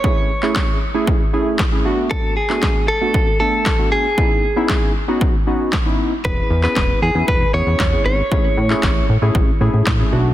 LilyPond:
<<
  \new Staff \with { instrumentName = "Clean electric guitar" } { \time 4/4 \key a \major \tempo 4 = 116 cis''4. r2 r8 | a'8 gis'4 a'4 a'4 gis'8~ | gis'4. r2 r8 | b'8. b'8. gis'8 b'8 cis''4 cis''8~ |
cis''4. r2 r8 | }
  \new Staff \with { instrumentName = "Synth keys" } { \time 4/4 \key a \major <a cis' e' gis'>8 r16 <a cis' e' gis'>8. r16 <a cis' e' gis'>8 r16 <a cis' e' gis'>8 r16 <a cis' e' gis'>16 <a b d' fis'>8~ | <a b d' fis'>8 r16 <a b d' fis'>8. r16 <a b d' fis'>8 r16 <a b d' a'>8 r16 <a b d' fis'>8 r16 | <b cis' dis' e'>8 r16 <b cis' dis' e'>8. r16 <b cis' dis' fis'>8 r16 <b cis' dis' fis'>8 r16 <b cis' dis' e'>8 r16 | <b cis' e' gis'>8 r16 <b cis' e' gis'>8. r16 <b cis' e' gis'>8 r16 <b cis' e' gis'>8 r16 <b cis' e' gis'>8 r16 |
<a cis' e' gis'>8 r16 <a cis' e' gis'>8. r16 <a cis' e' gis'>8 r16 <a cis' e' gis'>8 r16 <a cis' e' gis'>16 <a b d' fis'>8 | }
  \new Staff \with { instrumentName = "Analog synth bass" } { \clef bass \time 4/4 \key a \major r1 | r1 | r1 | e,,8 e,8 e,,8 e,16 e,16 e,,8 e,16 e,16 e,8 gis,,8 |
a,,8 a,8 a,,8 a,16 a,16 a,,8 a,16 a,16 a,8 b,,8 | }
  \new DrumStaff \with { instrumentName = "Drums" } \drummode { \time 4/4 bd8. hc16 <hc bd sn>4 bd4 <hc bd sn>4 | bd8. hc16 <hc bd sn>4 bd4 <hc bd sn>4 | bd4 <hc bd sn>4 bd4 <hc bd sn>4 | bd8. hc16 <hc bd sn>4 bd4 <hc bd sn>4 |
bd8. hc16 <hc bd sn>4 bd4 <hc bd sn>4 | }
>>